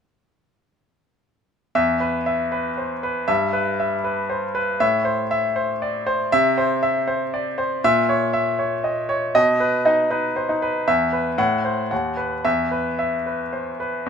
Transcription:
1.75 3.25 E2 medium
1.75 2.17 E5 medium
2.00 2.42 B4 soft
2.26 2.68 E5 medium
2.52 2.93 B4 soft
2.77 3.03 C5 soft
3.03 3.29 B4 medium
3.28 4.77 G2 medium
3.28 3.69 E5 medium
3.53 3.94 B4 medium
3.80 4.20 E5 medium
4.04 4.45 B4 medium
4.30 4.55 C5 soft
4.55 4.81 B4 medium
4.80 6.28 A2 medium
4.80 5.21 E5 medium
5.05 5.46 C5 medium
5.31 5.72 E5 medium
5.56 5.97 C5 medium
5.82 6.07 D5 soft
6.07 6.32 C5 medium
6.32 7.79 C3 medium
6.32 6.73 E5 loud
6.58 6.98 C5 medium
6.83 7.23 E5 medium
7.07 7.48 C5 medium
7.34 7.58 D5 medium
7.58 7.83 C5 medium
7.84 9.31 A#2 medium
7.84 8.24 E5 loud
8.09 8.49 C#5 medium
8.33 8.74 E5 medium
8.59 8.99 C#5 medium
8.84 9.09 D#5 soft
9.09 9.35 C#5 medium
9.35 10.83 B2 medium
9.35 9.75 D#5 medium
9.60 10.00 B4 medium
9.85 10.05 D#4 medium
9.85 10.25 D#5 medium
10.10 10.31 D#4 soft
10.10 10.51 B4 medium
10.36 10.61 C5 soft
10.49 10.69 D#4 soft
10.62 10.87 B4 medium
10.87 11.37 E2 medium
10.87 11.28 E5 medium
11.13 11.38 B4 medium
11.38 11.89 A2 medium
11.38 11.80 F#5 medium
11.65 11.91 C5 soft
11.91 12.43 D#2 medium
11.91 12.34 F#5 medium
12.17 12.44 B4 soft
12.44 14.02 E2 medium
12.44 12.88 E5 medium
12.71 13.15 B4 soft
12.99 13.42 E5 medium
13.26 13.69 B4 soft
13.53 13.79 C5 soft
13.80 14.06 B4 soft
14.06 14.09 E2 medium

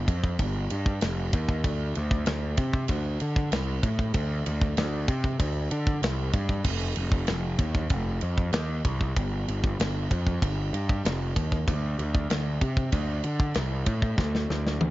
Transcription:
0.08 0.36 F2 medium
0.08 kick medium
0.08 ride medium
0.24 kick medium
0.39 0.67 G1 loud
0.39 kick medium
0.39 ride loud
0.70 0.99 G2 medium
0.70 ride medium
0.86 kick medium
1.01 1.30 F1 loud
1.01 snare loud
1.01 ride loud
1.33 1.64 D#2 loud
1.33 kick loud
1.33 ride medium
1.49 kick medium
1.64 1.92 D2 loud
1.64 kick loud
1.64 ride loud
1.95 2.24 D2 medium
1.95 ride medium
2.11 kick loud
2.26 2.55 D2 loud
2.26 snare loud
2.26 ride loud
2.57 2.86 C3 medium
2.57 kick medium
2.57 ride medium
2.73 kick loud
2.88 3.17 D2 loud
2.88 kick loud
2.88 ride loud
3.20 3.49 D3 loud
3.20 ride medium
3.36 kick medium
3.52 3.80 C2 loud
3.52 snare loud
3.52 ride loud
3.83 4.11 A2 medium
3.83 kick medium
3.83 ride medium
3.99 kick medium
4.14 4.42 D2 loud
4.14 kick medium
4.14 ride loud
4.46 4.74 D2 medium
4.46 ride medium
4.61 kick loud
4.77 5.05 D2 loud
4.77 snare loud
4.77 ride loud
5.08 5.36 C3 loud
5.08 kick medium
5.08 ride medium
5.24 kick medium
5.40 5.67 D2 loud
5.40 kick loud
5.40 ride loud
5.71 5.99 D3 loud
5.71 ride medium
5.87 kick medium
6.02 6.30 C2 loud
6.02 snare loud
6.02 ride loud
6.33 6.61 G2 medium
6.33 kick medium
6.33 ride medium
6.49 kick medium
6.64 6.93 F1 loud
6.64 kick loud
6.64 crash loud
6.96 7.25 F1 medium
6.96 ride medium
7.12 kick loud
7.27 7.56 F1 loud
7.27 snare loud
7.27 ride loud
7.58 7.87 D#2 loud
7.58 kick medium
7.58 ride medium
7.75 kick loud
7.89 8.18 F1 loud
7.89 kick loud
7.89 ride loud
8.21 8.50 F2 medium
8.21 ride medium
8.38 kick loud
8.53 8.81 D#2 loud
8.53 snare loud
8.53 ride loud
8.85 9.12 C2 medium
8.85 kick medium
8.85 ride medium
9.01 kick medium
9.16 9.44 G1 medium
9.16 kick loud
9.16 ride loud
9.48 9.76 G1 medium
9.48 ride medium
9.64 kick loud
9.80 10.07 G1 loud
9.80 snare loud
9.80 ride loud
10.11 10.38 F2 medium
10.11 kick medium
10.11 ride medium
10.27 kick medium
10.42 10.70 G1 loud
10.42 kick loud
10.42 ride loud
10.73 11.01 G2 medium
10.73 ride medium
10.89 kick medium
11.05 11.32 F1 loud
11.05 snare loud
11.05 ride loud
11.36 11.64 D#2 loud
11.36 kick medium
11.36 ride medium
11.52 kick medium
11.68 11.95 D2 loud
11.68 kick loud
11.68 ride loud
11.99 12.26 D2 loud
11.99 ride medium
12.15 kick medium
12.30 12.58 D2 loud
12.30 snare loud
12.30 ride loud
12.61 12.89 C3 medium
12.61 kick medium
12.61 ride medium
12.77 kick loud
12.92 13.20 D2 loud
12.92 kick medium
12.92 ride loud
13.24 13.52 D3 medium
13.24 ride medium
13.40 kick loud
13.54 13.83 C2 loud
13.54 snare loud
13.54 ride loud
13.86 14.14 A2 medium
13.86 kick medium
13.86 ride medium
14.02 kick medium
14.18 14.46 D2 loud
14.18 kick loud
14.18 snare medium
14.35 snare medium
14.50 14.78 D2 medium
14.50 snare medium
14.67 snare medium
14.81 14.90 D2 medium
14.81 high tom medium

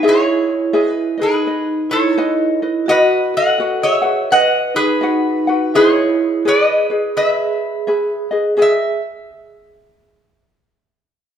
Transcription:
0.03 1.16 E4 medium
0.03 0.72 G#4 medium
0.03 0.73 B4 medium
0.03 0.74 D#5 medium
0.03 0.72 E5 medium
0.08 1.17 G#4 medium
0.08 0.90 C#5 medium
0.73 1.18 G#4 medium
0.73 1.18 B4 medium
0.73 1.16 D#5 medium
0.73 1.18 E5 medium
0.90 1.21 B4 medium
1.18 2.58 D#4 medium
1.18 1.47 G#4 soft
1.18 2.59 G#4 medium
1.18 1.46 B4 soft
1.18 1.45 D#5 medium
1.23 2.15 B4 medium
1.47 2.17 B4 medium
1.47 2.18 D#5 medium
1.90 2.84 E4 medium
1.90 2.15 A4 medium
1.90 2.90 C#5 medium
2.15 2.59 A4 medium
2.15 2.62 B4 medium
2.15 2.61 D#5 loud
2.62 2.88 B4 medium
2.62 2.87 D#5 medium
2.86 3.31 F#4 medium
2.86 3.59 F#4 medium
2.86 3.59 B4 medium
2.86 3.58 D#5 medium
2.86 3.36 D#5 loud
2.86 3.59 F#5 medium
2.91 3.34 B4 medium
3.34 3.79 A4 medium
3.34 3.81 D#5 medium
3.34 3.83 F#5 medium
3.58 4.03 F#4 medium
3.58 4.02 B4 medium
3.58 4.03 D#5 medium
3.58 4.01 F#5 medium
3.82 4.27 G#4 medium
3.82 4.28 C#5 medium
3.82 4.32 E5 loud
4.02 5.01 F#4 soft
4.02 5.02 B4 medium
4.02 5.01 F#5 medium
4.31 4.72 B4 loud
4.31 4.73 D#5 medium
4.31 4.73 F#5 loud
4.74 5.69 D#4 medium
4.74 5.70 G#4 medium
4.74 5.76 B4 medium
5.01 5.46 F#4 medium
5.01 5.47 B4 medium
5.01 5.46 D#5 medium
5.01 5.46 F#5 medium
5.47 5.75 F#4 soft
5.47 5.75 B4 medium
5.47 5.74 F#5 soft
5.74 6.41 E4 medium
5.74 6.42 G#4 medium
5.74 6.45 G#4 medium
5.74 6.45 B4 medium
5.74 6.47 C#5 medium
5.74 6.46 D#5 medium
5.74 6.46 E5 medium
6.45 6.89 G#4 medium
6.45 7.13 G#4 medium
6.45 6.89 B4 medium
6.45 7.13 B4 medium
6.45 6.90 D#5 medium
6.45 7.17 D#5 medium
6.90 7.88 G#4 soft
6.90 7.87 B4 soft
7.17 8.28 G#4 medium
7.17 8.28 B4 medium
7.17 8.28 E5 medium
7.87 8.31 G#4 medium
7.87 8.31 B4 medium
7.87 8.30 E5 medium
8.31 8.56 G#4 soft
8.31 8.57 B4 soft
8.31 8.56 D#5 medium
8.57 8.93 G#4 medium
8.57 8.99 G#4 medium
8.57 8.94 B4 medium
8.57 8.94 D#5 medium
8.57 8.93 E5 medium
8.62 9.01 E5 medium

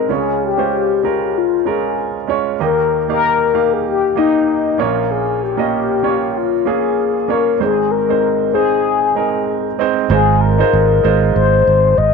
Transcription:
0.00 0.09 G#3 medium
0.00 0.12 C4 medium
0.00 0.12 D#4 medium
0.00 0.12 A#4 medium
0.00 0.14 A#4 medium
0.00 0.12 C5 medium
0.09 2.56 C#2 soft
0.09 2.56 C#3 soft
0.09 0.46 G#3 medium
0.09 0.46 C#4 soft
0.09 0.47 F4 medium
0.09 0.42 G#4 medium
0.09 0.47 C#5 medium
0.45 1.39 G4 medium
0.57 0.94 G#3 medium
0.57 0.94 C#4 medium
0.57 0.94 F4 soft
0.57 0.95 C5 medium
1.03 1.54 G#3 medium
1.03 1.54 C#4 soft
1.03 1.54 F4 medium
1.03 1.54 A#4 medium
1.38 1.69 F4 medium
1.65 2.16 G#3 medium
1.65 2.16 C#4 medium
1.65 2.17 F4 soft
1.65 2.30 G#4 medium
1.65 2.17 A#4 medium
2.27 2.53 G#3 medium
2.27 2.54 C#4 medium
2.27 2.54 F4 medium
2.27 2.54 C#5 medium
2.59 4.75 D#2 medium
2.59 4.75 D#3 soft
2.59 2.97 A#3 medium
2.59 2.97 D#4 soft
2.59 2.97 G4 medium
2.59 3.07 A#4 medium
2.59 2.98 D#5 medium
3.08 3.44 A#3 medium
3.08 3.45 D#4 medium
3.08 3.45 G4 medium
3.08 3.75 A#4 loud
3.08 3.45 F5 medium
3.54 4.04 A#3 medium
3.54 4.04 D#4 medium
3.54 4.04 G4 medium
3.54 4.05 F5 medium
3.73 3.86 G#4 medium
3.88 4.16 G4 medium
4.16 4.66 A#3 medium
4.16 4.67 D#4 medium
4.16 4.81 D#4 medium
4.16 4.67 G4 medium
4.16 4.67 D#5 medium
4.78 7.25 A#1 medium
4.78 7.25 A#2 medium
4.78 5.41 A#3 medium
4.78 5.42 C#4 medium
4.78 5.42 F4 medium
4.78 5.13 A#4 medium
4.78 5.42 C#5 medium
5.11 5.45 G#4 medium
5.43 6.39 G4 loud
5.57 5.94 A#3 medium
5.57 5.94 C#4 medium
5.57 5.94 F4 medium
5.57 5.95 D#5 medium
6.03 6.54 A#3 medium
6.03 6.54 C#4 medium
6.03 6.54 F4 medium
6.03 6.54 C#5 medium
6.37 6.68 F4 medium
6.65 7.16 A#3 medium
6.65 7.16 C#4 soft
6.65 7.17 F4 medium
6.65 7.33 G#4 medium
6.65 7.17 G#4 medium
7.28 7.54 A#3 medium
7.28 7.54 C#4 medium
7.28 7.54 F4 medium
7.28 7.61 A#4 medium
7.28 7.55 C#5 medium
7.59 10.06 G#1 medium
7.59 10.06 G#2 soft
7.59 7.97 G#3 medium
7.59 7.97 C4 soft
7.59 7.97 D#4 soft
7.59 7.93 G#4 medium
7.59 7.98 C5 medium
7.91 8.54 A#4 medium
8.09 8.45 G#3 medium
8.09 8.45 C4 medium
8.09 8.45 D#4 medium
8.09 8.45 C5 medium
8.53 9.04 G#3 medium
8.53 9.04 C4 medium
8.53 9.05 D#4 medium
8.53 9.75 G#4 medium
8.53 9.05 C5 medium
9.15 9.66 G#3 medium
9.15 9.66 C4 medium
9.15 9.67 D#4 medium
9.15 9.67 A#4 medium
9.79 10.04 G#3 medium
9.79 10.04 C4 medium
9.79 10.04 D#4 medium
9.79 10.05 C5 medium
10.10 10.61 G#1 loud
10.10 11.00 G#2 medium
10.10 10.47 G#3 medium
10.10 10.47 D#4 medium
10.10 10.47 F4 medium
10.10 10.42 G#4 medium
10.10 10.48 C5 medium
10.41 11.34 A#4 loud
10.58 10.94 G#3 medium
10.58 10.95 D#4 medium
10.58 10.95 F4 medium
10.58 10.95 C5 medium
10.73 10.99 G#1 loud
11.04 11.30 G#1 loud
11.04 11.90 G#3 medium
11.04 11.90 D#4 medium
11.04 11.90 F4 medium
11.04 11.90 C5 medium
11.35 11.61 G#1 medium
11.35 11.99 C5 loud
11.67 11.93 G#1 medium
11.97 12.14 G#1 medium
11.97 12.14 D#5 loud

